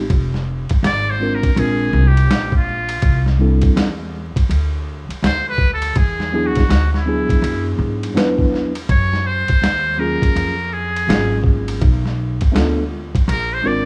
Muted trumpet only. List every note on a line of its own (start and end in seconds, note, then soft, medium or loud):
0.86 1.12 D5 loud
1.10 1.36 C5 loud
1.35 1.60 A#4 medium
1.59 2.09 G#4 loud
2.07 2.56 G4 medium
2.56 3.25 F4 medium
5.26 5.47 C5 loud
5.49 5.71 B4 loud
5.73 5.99 A4 loud
5.98 6.48 G#4 medium
6.46 6.92 F#4 medium
6.92 7.68 E4 medium
6.92 6.97 F#4 medium
8.90 9.28 C#5 loud
9.26 10.01 C5 loud
9.99 10.75 A#4 medium
10.73 11.46 G#4 medium
13.30 13.55 A#4 loud
13.54 13.68 C5 loud
13.67 13.85 D5 medium